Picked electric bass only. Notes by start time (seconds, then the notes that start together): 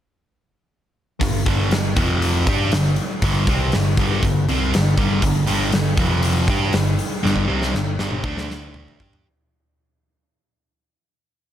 1.22 G1
1.46 G1
1.72 G1
1.97 F1
2.47 G2
2.73 G1
3.23 G1
3.48 C2
3.75 G1
3.98 G1
4.23 G1
4.48 C2
4.75 G1
4.97 G1
5.22 G1
5.49 G1
5.74 G1
5.98 F1
6.48 G2
6.75 G1
7.25 G1
7.49 C2
7.75 G1
8.00 G1
8.23 D2
9.00 G2